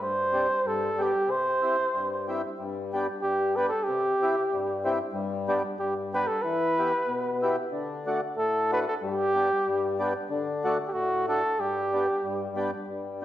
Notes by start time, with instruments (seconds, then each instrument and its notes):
0.00 accordion G2, flugelhorn C5
0.33 accordion C4 D4 G4
0.64 accordion G2, flugelhorn A4
0.98 accordion B3 D4 G4
1.02 flugelhorn G4
1.27 accordion C3, flugelhorn C5
1.62 accordion C4 E4 G4
1.94 accordion G2
2.28 accordion C4 E4 G4
2.59 accordion G2
2.93 accordion B3 D4 G4
3.22 accordion G2, flugelhorn G4
3.56 accordion B3 D4 G4, flugelhorn B4
3.69 flugelhorn A4
3.84 flugelhorn G4
3.88 accordion C3
4.22 accordion C4 E4 G4
4.52 accordion G2
4.85 accordion C4 E4 G4
5.13 accordion G2
5.48 accordion B3 D4 G4
5.78 accordion G2, flugelhorn G4
6.14 accordion B3 D4 G4, flugelhorn B4
6.27 flugelhorn A4
6.42 accordion E3, flugelhorn B4
6.79 accordion B3 E4 G4
7.08 accordion B2
7.42 accordion B3 E4 G4
7.72 accordion D3
8.06 accordion A3 D4 F#4
8.36 accordion A2, flugelhorn A4
8.71 accordion A3 D4 F#4, flugelhorn B4
8.88 flugelhorn A4
9.02 accordion G2, flugelhorn G4
9.34 accordion B3 D4 G4
9.66 accordion G2
9.99 accordion B3 D4 G4
10.30 accordion D3
10.64 accordion A3 D4 F#4
10.88 flugelhorn G4
10.93 accordion A2, flugelhorn F#4
11.28 accordion A3 D4 F#4, flugelhorn A4
11.59 accordion G2, flugelhorn G4
11.93 accordion B3 D4 G4
12.23 accordion G2
12.56 accordion B3 D4 G4
12.87 accordion G2
13.22 accordion B3